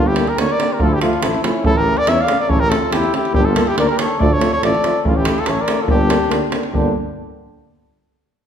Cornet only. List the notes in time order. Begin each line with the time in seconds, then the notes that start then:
0.07 G4
0.29 A#4
0.40 C#5
0.52 D5
0.73 A#4
0.83 A4
0.94 G4
1.02 F4
1.23 E4
1.44 E4
1.66 A4
1.77 A#4
1.98 D5
2.08 E5
2.21 F5
2.40 D5
2.50 C#5
2.60 A#4
2.70 A4
2.93 G4
3.16 G4
3.35 G4
3.45 A4
3.68 G4
3.79 D5
3.88 A#4
3.99 C#5
4.19 D5
4.33 C#5
4.53 C#5
4.64 D5
5.07 F4
5.17 G4
5.39 A4
5.49 C#5
5.61 D5
5.81 A4
5.91 G4
6.74 G4